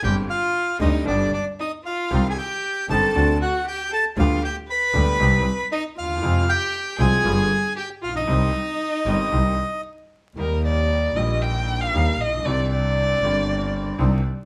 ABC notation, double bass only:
X:1
M:4/4
L:1/8
Q:1/4=116
K:Cm
V:1 name="Double bass" clef=bass
G,,, z2 D,, G,,, z3 | C,, z2 G,,, D,, z3 | D,, z2 D,, C,, z2 E,, | F,, z2 C,, G,,, z2 B,,, |
C,, z2 G,,, C,, z3 | [K:Eb] E,,3 B,,,3 E,, B,,, | C,,3 G,,,3 C,, z |]